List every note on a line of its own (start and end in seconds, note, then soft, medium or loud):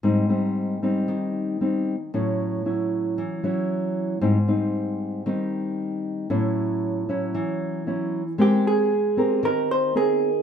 0.03 1.05 G#2 medium
0.03 0.25 G3 soft
0.03 0.26 C4 soft
0.03 0.26 D#4 medium
0.29 0.77 G3 soft
0.29 0.78 C4 soft
0.29 0.78 D#4 medium
0.82 1.56 G3 medium
0.82 1.57 C4 medium
0.82 1.57 D#4 medium
1.08 2.10 D#3 medium
1.61 1.94 G3 soft
1.61 1.95 C4 medium
1.61 1.95 D#4 medium
2.14 3.15 A2 medium
2.14 2.61 F#3 soft
2.14 2.61 C#4 medium
2.14 2.62 E4 medium
2.65 3.39 F#3 soft
2.65 3.39 C#4 soft
2.65 3.39 E4 soft
3.18 4.19 E3 medium
3.43 4.19 F#3 medium
3.43 4.20 C#4 medium
3.43 4.20 E4 medium
4.21 5.23 G#2 medium
4.21 4.37 G3 medium
4.21 4.37 C4 soft
4.21 4.37 D#4 medium
4.48 5.22 G3 medium
4.48 5.22 C4 medium
4.48 5.22 D#4 medium
5.26 6.28 D#3 medium
5.26 6.26 G3 soft
5.26 6.26 C4 soft
5.26 6.26 D#4 medium
6.30 7.32 A2 medium
6.30 7.04 F#3 medium
6.30 7.04 C#4 medium
6.30 7.04 E4 medium
7.09 7.82 F#3 medium
7.09 7.83 C#4 medium
7.09 7.83 E4 medium
7.34 8.36 E3 medium
7.87 8.21 F#3 medium
7.87 8.22 C#4 medium
7.87 8.22 E4 medium
8.38 9.40 G#3 medium
8.38 8.90 C4 medium
8.38 8.90 G4 medium
8.38 8.64 G4 medium
8.38 8.91 A#4 medium
8.67 9.40 G#4 medium
9.17 9.91 C4 medium
9.17 9.91 G4 medium
9.17 9.91 A#4 medium
9.43 10.42 D#3 medium
9.43 9.71 A#4 medium
9.71 9.96 C5 medium
9.95 10.28 C4 medium
9.95 10.42 G#4 medium
9.95 10.29 A#4 medium